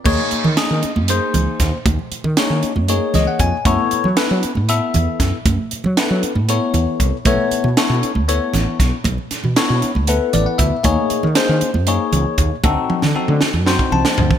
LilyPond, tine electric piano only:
\new Staff \with { instrumentName = "Tine electric piano" } { \time 7/8 \key ges \lydian \tempo 4 = 117 << { r2. r8 | r2 r8 ees''16 ges''16 aes''8 | r2. r8 | r2. r8 |
r2. r8 | r2 r8 d''16 fis''16 e''8 | r2. r8 | r2 r8 a''4 | } \\ { <bes ees' aes' des''>4 <bes ees' aes' ees''>8 r8 <bes ees' aes' c''>4. | r4 <bes ees' aes' des''>8 r8 <bes ees' aes' des''>4. | <ces' fes' a' des''>4 <ces' fes' a' ces''>8 r8 <ces' fes' a' fes''>4. | r4 <ces' fes' a' ces''>8 r8 <ces' fes' a' des''>4. |
<b e' a' cis''>4 <b e' a' cis''>8 r8 <b e' a' cis''>4. | r4 <b e' a' cis''>8 r8 <b e' a' b'>4. | <bes ees' aes' des''>4 <bes ees' aes' c''>8 r8 <bes ees' aes' des''>4. | <c' ees' fis' a'>4 <c' ees' fis' a'>8 r8 <c' ees' fis' c''>4. | } >> }